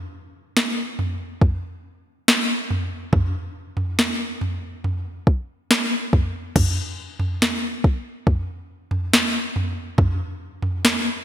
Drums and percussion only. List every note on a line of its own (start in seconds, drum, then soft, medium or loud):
0.57 snare medium
0.99 floor tom medium
1.42 kick medium
1.42 floor tom medium
2.28 snare loud
2.70 floor tom medium
3.13 kick loud
3.13 floor tom loud
3.77 floor tom medium
3.99 snare loud
4.41 floor tom medium
4.84 floor tom medium
5.27 kick medium
5.71 snare loud
6.13 kick medium
6.13 floor tom medium
6.56 kick loud
6.56 floor tom loud
6.56 crash medium
7.20 floor tom medium
7.42 snare medium
7.84 kick medium
8.27 kick medium
8.27 floor tom medium
8.91 floor tom medium
9.13 snare loud
9.56 floor tom medium
9.98 kick loud
9.98 floor tom loud
10.62 floor tom medium
10.85 snare loud